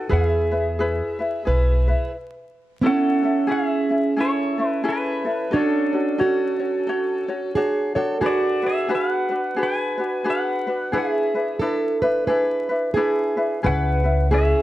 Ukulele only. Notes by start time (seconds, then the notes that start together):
Already playing: A4
0.09 E4 G#4 B4
0.51 E4 B4
0.79 E4 G#4 B4
1.19 E4 B4
1.45 E4 G#4 B4
1.88 E4 B4
2.82 C#4 E4 A4
3.23 C#4 E4 A4
3.47 C#4 E4 G#4
3.90 C#4 E4
4.16 C#4 E4 G#4 A4
4.58 C#4 E4 A4
4.84 C#4 E4 G#4 A4
5.25 C#4 E4 A4
5.51 F#4 A4 C#5
5.93 F#4 C#5
6.18 F#4 A4 C#5
6.59 F#4 C#5
6.87 F#4 A4 C#5
7.28 F#4 C#5
7.56 D4 F#4 C#5
7.95 D4 F#4 C#5
8.21 D4 F#4 G#4 B4
8.63 D4 F#4 B4
8.88 D4 F#4 G#4 B4
9.29 D4 F#4 B4
9.56 D4 F#4 G#4 B4
9.98 D4 F#4 B4
10.24 D4 F#4 G#4 B4
10.67 D4 F#4 B4
10.92 D4 E4 G#4 B4
11.35 D4 E4 B4
11.61 D4 E4 B4
12.02 D4 E4 B4
12.27 D4 E4 G#4 B4
12.69 D4 E4 B4
12.95 D4 E4 G#4 B4
13.37 D4 E4 B4
13.63 C#4 E4 G#4 B4
14.04 C#4 E4 B4
14.31 C#4 E4 G#4 B4